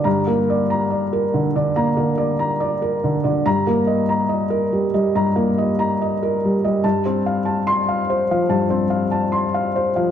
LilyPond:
<<
  \new Staff \with { instrumentName = "Felt piano" } { \time 4/4 \key ees \lydian \tempo 4 = 71 << { r1 | bes''8 r2. r8 | r4 c'''8 r2 r8 | } \\ { <d'' bes''>16 bes'16 d''16 bes''16 d''16 bes'16 d16 d''16 bes''16 bes'16 d''16 bes''16 d''16 bes'16 d16 d''16 | r16 bes'16 ees''16 bes''16 ees''16 bes'16 g16 ees''16 bes''16 bes'16 ees''16 bes''16 ees''16 bes'16 g16 ees''16 | a''16 c''16 f''16 a''8 f''16 c''16 f''16 a''16 c''16 f''16 a''16 c'''16 f''16 c''16 f''16 | } >> }
  \new Staff \with { instrumentName = "Felt piano" } { \clef bass \time 4/4 \key ees \lydian <g, d>16 bes8 r4 d16 bes16 d8 r4 d16 | g,16 bes8 r4 g16 g,16 bes8 r4 g16 | g,16 c'8 r4 f16 g,16 c'8 r4 f16 | }
>>